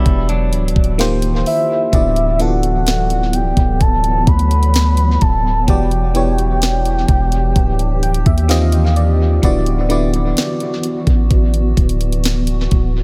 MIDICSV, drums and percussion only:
0, 0, Header, 1, 2, 480
1, 0, Start_track
1, 0, Tempo, 937500
1, 988, Time_signature, 4, 2, 24, 8
1, 6673, End_track
2, 0, Start_track
2, 0, Title_t, "Drums"
2, 30, Note_on_c, 9, 36, 110
2, 30, Note_on_c, 9, 42, 60
2, 81, Note_off_c, 9, 36, 0
2, 81, Note_off_c, 9, 42, 0
2, 148, Note_on_c, 9, 42, 49
2, 199, Note_off_c, 9, 42, 0
2, 270, Note_on_c, 9, 42, 76
2, 321, Note_off_c, 9, 42, 0
2, 349, Note_on_c, 9, 42, 59
2, 389, Note_on_c, 9, 36, 105
2, 400, Note_off_c, 9, 42, 0
2, 429, Note_on_c, 9, 42, 41
2, 441, Note_off_c, 9, 36, 0
2, 481, Note_off_c, 9, 42, 0
2, 507, Note_on_c, 9, 42, 70
2, 516, Note_on_c, 9, 38, 118
2, 558, Note_off_c, 9, 42, 0
2, 567, Note_off_c, 9, 38, 0
2, 626, Note_on_c, 9, 42, 70
2, 677, Note_off_c, 9, 42, 0
2, 749, Note_on_c, 9, 46, 71
2, 800, Note_off_c, 9, 46, 0
2, 988, Note_on_c, 9, 36, 104
2, 989, Note_on_c, 9, 42, 73
2, 1039, Note_off_c, 9, 36, 0
2, 1040, Note_off_c, 9, 42, 0
2, 1108, Note_on_c, 9, 42, 48
2, 1159, Note_off_c, 9, 42, 0
2, 1227, Note_on_c, 9, 42, 67
2, 1278, Note_off_c, 9, 42, 0
2, 1348, Note_on_c, 9, 42, 58
2, 1399, Note_off_c, 9, 42, 0
2, 1467, Note_on_c, 9, 42, 76
2, 1473, Note_on_c, 9, 38, 107
2, 1519, Note_off_c, 9, 42, 0
2, 1525, Note_off_c, 9, 38, 0
2, 1588, Note_on_c, 9, 42, 46
2, 1639, Note_off_c, 9, 42, 0
2, 1707, Note_on_c, 9, 42, 77
2, 1758, Note_off_c, 9, 42, 0
2, 1827, Note_on_c, 9, 36, 97
2, 1828, Note_on_c, 9, 42, 54
2, 1878, Note_off_c, 9, 36, 0
2, 1879, Note_off_c, 9, 42, 0
2, 1949, Note_on_c, 9, 36, 109
2, 1949, Note_on_c, 9, 42, 64
2, 2000, Note_off_c, 9, 36, 0
2, 2000, Note_off_c, 9, 42, 0
2, 2068, Note_on_c, 9, 42, 53
2, 2119, Note_off_c, 9, 42, 0
2, 2187, Note_on_c, 9, 36, 100
2, 2187, Note_on_c, 9, 42, 62
2, 2238, Note_off_c, 9, 36, 0
2, 2239, Note_off_c, 9, 42, 0
2, 2249, Note_on_c, 9, 42, 61
2, 2300, Note_off_c, 9, 42, 0
2, 2309, Note_on_c, 9, 42, 59
2, 2360, Note_off_c, 9, 42, 0
2, 2369, Note_on_c, 9, 42, 58
2, 2420, Note_off_c, 9, 42, 0
2, 2426, Note_on_c, 9, 42, 71
2, 2435, Note_on_c, 9, 38, 118
2, 2478, Note_off_c, 9, 42, 0
2, 2487, Note_off_c, 9, 38, 0
2, 2546, Note_on_c, 9, 42, 68
2, 2597, Note_off_c, 9, 42, 0
2, 2669, Note_on_c, 9, 42, 51
2, 2671, Note_on_c, 9, 36, 101
2, 2720, Note_off_c, 9, 42, 0
2, 2722, Note_off_c, 9, 36, 0
2, 2908, Note_on_c, 9, 36, 106
2, 2909, Note_on_c, 9, 42, 75
2, 2959, Note_off_c, 9, 36, 0
2, 2960, Note_off_c, 9, 42, 0
2, 3028, Note_on_c, 9, 42, 48
2, 3079, Note_off_c, 9, 42, 0
2, 3148, Note_on_c, 9, 42, 64
2, 3199, Note_off_c, 9, 42, 0
2, 3269, Note_on_c, 9, 42, 54
2, 3320, Note_off_c, 9, 42, 0
2, 3389, Note_on_c, 9, 42, 82
2, 3394, Note_on_c, 9, 38, 108
2, 3440, Note_off_c, 9, 42, 0
2, 3446, Note_off_c, 9, 38, 0
2, 3510, Note_on_c, 9, 42, 47
2, 3561, Note_off_c, 9, 42, 0
2, 3628, Note_on_c, 9, 36, 99
2, 3628, Note_on_c, 9, 42, 75
2, 3679, Note_off_c, 9, 36, 0
2, 3679, Note_off_c, 9, 42, 0
2, 3748, Note_on_c, 9, 42, 52
2, 3799, Note_off_c, 9, 42, 0
2, 3870, Note_on_c, 9, 36, 106
2, 3870, Note_on_c, 9, 42, 66
2, 3921, Note_off_c, 9, 36, 0
2, 3921, Note_off_c, 9, 42, 0
2, 3990, Note_on_c, 9, 42, 52
2, 4041, Note_off_c, 9, 42, 0
2, 4111, Note_on_c, 9, 42, 65
2, 4162, Note_off_c, 9, 42, 0
2, 4170, Note_on_c, 9, 42, 62
2, 4221, Note_off_c, 9, 42, 0
2, 4229, Note_on_c, 9, 36, 105
2, 4229, Note_on_c, 9, 42, 63
2, 4280, Note_off_c, 9, 42, 0
2, 4281, Note_off_c, 9, 36, 0
2, 4289, Note_on_c, 9, 42, 62
2, 4340, Note_off_c, 9, 42, 0
2, 4347, Note_on_c, 9, 42, 70
2, 4356, Note_on_c, 9, 38, 113
2, 4399, Note_off_c, 9, 42, 0
2, 4407, Note_off_c, 9, 38, 0
2, 4467, Note_on_c, 9, 42, 70
2, 4518, Note_off_c, 9, 42, 0
2, 4589, Note_on_c, 9, 42, 49
2, 4640, Note_off_c, 9, 42, 0
2, 4828, Note_on_c, 9, 36, 102
2, 4830, Note_on_c, 9, 42, 76
2, 4880, Note_off_c, 9, 36, 0
2, 4881, Note_off_c, 9, 42, 0
2, 4948, Note_on_c, 9, 42, 48
2, 4999, Note_off_c, 9, 42, 0
2, 5068, Note_on_c, 9, 42, 71
2, 5120, Note_off_c, 9, 42, 0
2, 5190, Note_on_c, 9, 42, 56
2, 5241, Note_off_c, 9, 42, 0
2, 5309, Note_on_c, 9, 42, 77
2, 5315, Note_on_c, 9, 38, 111
2, 5360, Note_off_c, 9, 42, 0
2, 5366, Note_off_c, 9, 38, 0
2, 5429, Note_on_c, 9, 42, 46
2, 5480, Note_off_c, 9, 42, 0
2, 5547, Note_on_c, 9, 42, 76
2, 5599, Note_off_c, 9, 42, 0
2, 5667, Note_on_c, 9, 36, 92
2, 5668, Note_on_c, 9, 42, 55
2, 5719, Note_off_c, 9, 36, 0
2, 5719, Note_off_c, 9, 42, 0
2, 5789, Note_on_c, 9, 36, 112
2, 5789, Note_on_c, 9, 42, 64
2, 5840, Note_off_c, 9, 36, 0
2, 5840, Note_off_c, 9, 42, 0
2, 5907, Note_on_c, 9, 42, 53
2, 5958, Note_off_c, 9, 42, 0
2, 6027, Note_on_c, 9, 36, 96
2, 6028, Note_on_c, 9, 42, 63
2, 6078, Note_off_c, 9, 36, 0
2, 6080, Note_off_c, 9, 42, 0
2, 6089, Note_on_c, 9, 42, 65
2, 6140, Note_off_c, 9, 42, 0
2, 6148, Note_on_c, 9, 42, 60
2, 6199, Note_off_c, 9, 42, 0
2, 6208, Note_on_c, 9, 42, 59
2, 6259, Note_off_c, 9, 42, 0
2, 6265, Note_on_c, 9, 42, 70
2, 6274, Note_on_c, 9, 38, 125
2, 6317, Note_off_c, 9, 42, 0
2, 6326, Note_off_c, 9, 38, 0
2, 6385, Note_on_c, 9, 42, 69
2, 6437, Note_off_c, 9, 42, 0
2, 6509, Note_on_c, 9, 42, 50
2, 6511, Note_on_c, 9, 36, 98
2, 6560, Note_off_c, 9, 42, 0
2, 6562, Note_off_c, 9, 36, 0
2, 6673, End_track
0, 0, End_of_file